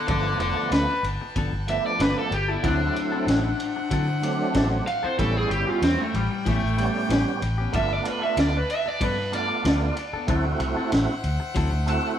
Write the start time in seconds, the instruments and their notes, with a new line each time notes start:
Already playing: horn section B4 G5 A5
0.07 fingered electric bass G1, tonewheel organ F3 A3 B3 D4, clean electric guitar F3 B3 D4 A4, overdriven electric guitar A4 D5, kick, ride
0.25 muted clean electric guitar stroke
0.39 fingered electric bass F1, overdriven electric guitar A4 D5, muted clean electric guitar stroke, ride
0.57 clean electric guitar B3 D4 A4, muted fingered electric bass stroke
0.71 fingered electric bass D2, overdriven electric guitar B4, muted clean electric guitar stroke, snare, ride
1.03 fingered electric bass G1, ride
1.22 muted clean electric guitar stroke
1.36 fingered electric bass G1, clean electric guitar F3 B3 D4 A4, kick, ride
1.53 fingered electric bass G1, muted clean electric guitar stroke
1.67 tonewheel organ F3 A3 B3 D4, overdriven electric guitar E5, muted clean electric guitar stroke, ride
1.86 overdriven electric guitar D5
1.99 fingered electric bass G1, clean electric guitar F3 B3 D4 A4, overdriven electric guitar B4, snare, ride
2.16 overdriven electric guitar A4, muted clean electric guitar stroke
2.31 fingered electric bass G1, overdriven electric guitar G4, muted clean electric guitar stroke, ride
2.48 clean electric guitar B3 D4 A4, overdriven electric guitar E4
2.62 fingered electric bass D2, tonewheel organ F#3 A3 C4 E4, clean electric guitar F#3 C4 E4 A4, overdriven electric guitar D4, horn section C5 E5 F#5, kick, ride
2.80 muted clean electric guitar stroke
2.95 muted clean electric guitar stroke, ride
3.12 clean electric guitar C4 E4 A4
3.26 fingered electric bass A1, muted clean electric guitar stroke, snare, ride
3.60 ride
3.76 muted clean electric guitar stroke
3.91 fingered electric bass D3, clean electric guitar F#3 C4 E4 A4, kick, ride
4.08 muted clean electric guitar stroke
4.21 tonewheel organ F#3 A3 C4 D4, muted clean electric guitar stroke, ride
4.54 fingered electric bass A1, clean electric guitar F#3 C4 E4 A4, kick, snare, ride
4.72 muted clean electric guitar stroke
4.86 overdriven electric guitar F5, muted clean electric guitar stroke, ride
5.03 clean electric guitar C4 E4 A4, overdriven electric guitar C5, muted fingered electric bass stroke
5.18 fingered electric bass A1, clean electric guitar E3 B3 C#4 G4, tonewheel organ G3 B3 C#4 E4, overdriven electric guitar A4, horn section B4 C#5 G5, kick, ride
5.35 overdriven electric guitar G#4, muted clean electric guitar stroke
5.50 fingered electric bass G1, overdriven electric guitar G4, muted clean electric guitar stroke, ride
5.67 clean electric guitar B3 C#4 G4, overdriven electric guitar F4, muted fingered electric bass stroke
5.82 fingered electric bass E2, overdriven electric guitar C4, muted clean electric guitar stroke, snare, ride
6.00 overdriven electric guitar A3
6.14 fingered electric bass A1, overdriven electric guitar G3, ride
6.31 muted clean electric guitar stroke
6.45 fingered electric bass A1, clean electric guitar E3 B3 C#4 G4, overdriven electric guitar A3, kick, ride
6.62 fingered electric bass A1, muted clean electric guitar stroke
6.77 tonewheel organ G3 B3 C#4 G4, muted clean electric guitar stroke, ride
7.09 fingered electric bass A1, clean electric guitar E3 B3 C#4 G4, snare, ride
7.26 muted clean electric guitar stroke
7.42 fingered electric bass A1, muted clean electric guitar stroke, ride
7.58 clean electric guitar B3 C#4 G4
7.72 fingered electric bass G1, clean electric guitar F3 B3 D4 A4, tonewheel organ A3 B3 D4 F4, overdriven electric guitar E5, horn section F5 A5, kick, ride
7.90 overdriven electric guitar D5, muted clean electric guitar stroke
8.05 overdriven electric guitar B4, muted clean electric guitar stroke, ride
8.22 clean electric guitar B3 D4 A4, overdriven electric guitar E5
8.37 fingered electric bass D2, overdriven electric guitar D5, muted clean electric guitar stroke, snare, ride
8.57 overdriven electric guitar B4
8.70 overdriven electric guitar E5, ride
8.86 overdriven electric guitar D5, muted clean electric guitar stroke
9.00 fingered electric bass G2, clean electric guitar F3 B3 D4 A4, overdriven electric guitar B4, kick, ride
9.19 muted clean electric guitar stroke
9.32 tonewheel organ A3 B3 D4 F4, overdriven electric guitar D5, muted clean electric guitar stroke, ride
9.65 fingered electric bass D2, clean electric guitar F3 B3 D4 A4, snare, ride
9.82 muted clean electric guitar stroke
9.97 muted clean electric guitar stroke, ride
10.13 clean electric guitar B3 D4 A4, muted fingered electric bass stroke
10.27 fingered electric bass D2, clean electric guitar F#3 C4 E4 A4, tonewheel organ A3 C4 E4 F#4, horn section C5 E5 F#5, kick, ride
10.46 muted clean electric guitar stroke
10.60 fingered electric bass C2, muted clean electric guitar stroke, ride
10.77 clean electric guitar C4 E4 A4
10.91 fingered electric bass A1, muted clean electric guitar stroke, snare, ride
11.24 fingered electric bass D2, ride
11.40 muted clean electric guitar stroke
11.55 fingered electric bass D2, clean electric guitar F#3 C4 E4 A4, kick, ride
11.72 fingered electric bass D2, muted clean electric guitar stroke
11.86 tonewheel organ A3 C4 E4 F#4, overdriven electric guitar A5, muted clean electric guitar stroke, ride